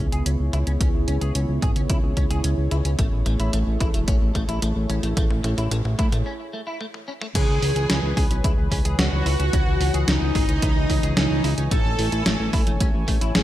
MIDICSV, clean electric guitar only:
0, 0, Header, 1, 2, 480
1, 0, Start_track
1, 0, Key_signature, 4, "minor"
1, 0, Tempo, 545455
1, 709, Time_signature, 4, 2, 24, 8
1, 11819, End_track
2, 0, Start_track
2, 0, Title_t, "Clean electric guitar"
2, 0, Program_c, 0, 27
2, 109, Note_on_c, 0, 68, 75
2, 199, Note_off_c, 0, 68, 0
2, 228, Note_on_c, 0, 61, 82
2, 265, Note_off_c, 0, 61, 0
2, 469, Note_on_c, 0, 64, 77
2, 505, Note_off_c, 0, 64, 0
2, 589, Note_on_c, 0, 61, 77
2, 625, Note_off_c, 0, 61, 0
2, 709, Note_on_c, 0, 61, 86
2, 769, Note_off_c, 0, 61, 0
2, 949, Note_on_c, 0, 61, 78
2, 1009, Note_off_c, 0, 61, 0
2, 1068, Note_on_c, 0, 68, 78
2, 1158, Note_off_c, 0, 68, 0
2, 1189, Note_on_c, 0, 61, 81
2, 1225, Note_off_c, 0, 61, 0
2, 1429, Note_on_c, 0, 68, 99
2, 1489, Note_off_c, 0, 68, 0
2, 1549, Note_on_c, 0, 61, 75
2, 1585, Note_off_c, 0, 61, 0
2, 1669, Note_on_c, 0, 64, 84
2, 1729, Note_off_c, 0, 64, 0
2, 1910, Note_on_c, 0, 61, 76
2, 1969, Note_off_c, 0, 61, 0
2, 2029, Note_on_c, 0, 68, 76
2, 2119, Note_off_c, 0, 68, 0
2, 2151, Note_on_c, 0, 61, 83
2, 2186, Note_off_c, 0, 61, 0
2, 2390, Note_on_c, 0, 64, 78
2, 2426, Note_off_c, 0, 64, 0
2, 2509, Note_on_c, 0, 61, 74
2, 2545, Note_off_c, 0, 61, 0
2, 2629, Note_on_c, 0, 57, 87
2, 2689, Note_off_c, 0, 57, 0
2, 2870, Note_on_c, 0, 57, 79
2, 2929, Note_off_c, 0, 57, 0
2, 2990, Note_on_c, 0, 64, 80
2, 3079, Note_off_c, 0, 64, 0
2, 3109, Note_on_c, 0, 57, 85
2, 3145, Note_off_c, 0, 57, 0
2, 3349, Note_on_c, 0, 64, 103
2, 3409, Note_off_c, 0, 64, 0
2, 3469, Note_on_c, 0, 57, 77
2, 3505, Note_off_c, 0, 57, 0
2, 3589, Note_on_c, 0, 61, 84
2, 3649, Note_off_c, 0, 61, 0
2, 3829, Note_on_c, 0, 57, 77
2, 3889, Note_off_c, 0, 57, 0
2, 3949, Note_on_c, 0, 64, 79
2, 4039, Note_off_c, 0, 64, 0
2, 4069, Note_on_c, 0, 57, 84
2, 4105, Note_off_c, 0, 57, 0
2, 4308, Note_on_c, 0, 61, 78
2, 4345, Note_off_c, 0, 61, 0
2, 4429, Note_on_c, 0, 57, 74
2, 4465, Note_off_c, 0, 57, 0
2, 4549, Note_on_c, 0, 57, 87
2, 4609, Note_off_c, 0, 57, 0
2, 4789, Note_on_c, 0, 57, 80
2, 4849, Note_off_c, 0, 57, 0
2, 4910, Note_on_c, 0, 64, 80
2, 4999, Note_off_c, 0, 64, 0
2, 5028, Note_on_c, 0, 57, 82
2, 5065, Note_off_c, 0, 57, 0
2, 5268, Note_on_c, 0, 64, 103
2, 5329, Note_off_c, 0, 64, 0
2, 5388, Note_on_c, 0, 57, 77
2, 5425, Note_off_c, 0, 57, 0
2, 5509, Note_on_c, 0, 61, 83
2, 5569, Note_off_c, 0, 61, 0
2, 5749, Note_on_c, 0, 57, 79
2, 5809, Note_off_c, 0, 57, 0
2, 5868, Note_on_c, 0, 64, 76
2, 5958, Note_off_c, 0, 64, 0
2, 5988, Note_on_c, 0, 57, 83
2, 6024, Note_off_c, 0, 57, 0
2, 6229, Note_on_c, 0, 61, 80
2, 6265, Note_off_c, 0, 61, 0
2, 6350, Note_on_c, 0, 57, 77
2, 6385, Note_off_c, 0, 57, 0
2, 6469, Note_on_c, 0, 61, 83
2, 6529, Note_off_c, 0, 61, 0
2, 6710, Note_on_c, 0, 61, 81
2, 6769, Note_off_c, 0, 61, 0
2, 6830, Note_on_c, 0, 68, 79
2, 6920, Note_off_c, 0, 68, 0
2, 6949, Note_on_c, 0, 61, 81
2, 6985, Note_off_c, 0, 61, 0
2, 7190, Note_on_c, 0, 68, 101
2, 7249, Note_off_c, 0, 68, 0
2, 7309, Note_on_c, 0, 61, 79
2, 7345, Note_off_c, 0, 61, 0
2, 7430, Note_on_c, 0, 64, 84
2, 7489, Note_off_c, 0, 64, 0
2, 7671, Note_on_c, 0, 61, 81
2, 7730, Note_off_c, 0, 61, 0
2, 7790, Note_on_c, 0, 68, 75
2, 7880, Note_off_c, 0, 68, 0
2, 7910, Note_on_c, 0, 61, 82
2, 7946, Note_off_c, 0, 61, 0
2, 8149, Note_on_c, 0, 64, 78
2, 8185, Note_off_c, 0, 64, 0
2, 8269, Note_on_c, 0, 61, 78
2, 8305, Note_off_c, 0, 61, 0
2, 8389, Note_on_c, 0, 61, 84
2, 8449, Note_off_c, 0, 61, 0
2, 8629, Note_on_c, 0, 61, 80
2, 8689, Note_off_c, 0, 61, 0
2, 8749, Note_on_c, 0, 68, 82
2, 8839, Note_off_c, 0, 68, 0
2, 8870, Note_on_c, 0, 61, 85
2, 8905, Note_off_c, 0, 61, 0
2, 9109, Note_on_c, 0, 68, 103
2, 9169, Note_off_c, 0, 68, 0
2, 9229, Note_on_c, 0, 61, 77
2, 9265, Note_off_c, 0, 61, 0
2, 9350, Note_on_c, 0, 64, 86
2, 9409, Note_off_c, 0, 64, 0
2, 9590, Note_on_c, 0, 61, 77
2, 9649, Note_off_c, 0, 61, 0
2, 9710, Note_on_c, 0, 68, 78
2, 9799, Note_off_c, 0, 68, 0
2, 9829, Note_on_c, 0, 61, 83
2, 9865, Note_off_c, 0, 61, 0
2, 10069, Note_on_c, 0, 64, 80
2, 10105, Note_off_c, 0, 64, 0
2, 10190, Note_on_c, 0, 61, 75
2, 10226, Note_off_c, 0, 61, 0
2, 10310, Note_on_c, 0, 57, 88
2, 10369, Note_off_c, 0, 57, 0
2, 10549, Note_on_c, 0, 57, 80
2, 10609, Note_off_c, 0, 57, 0
2, 10669, Note_on_c, 0, 64, 80
2, 10759, Note_off_c, 0, 64, 0
2, 10788, Note_on_c, 0, 57, 87
2, 10825, Note_off_c, 0, 57, 0
2, 11028, Note_on_c, 0, 64, 101
2, 11089, Note_off_c, 0, 64, 0
2, 11149, Note_on_c, 0, 57, 76
2, 11185, Note_off_c, 0, 57, 0
2, 11269, Note_on_c, 0, 61, 86
2, 11329, Note_off_c, 0, 61, 0
2, 11509, Note_on_c, 0, 57, 80
2, 11569, Note_off_c, 0, 57, 0
2, 11629, Note_on_c, 0, 64, 79
2, 11719, Note_off_c, 0, 64, 0
2, 11749, Note_on_c, 0, 57, 84
2, 11785, Note_off_c, 0, 57, 0
2, 11819, End_track
0, 0, End_of_file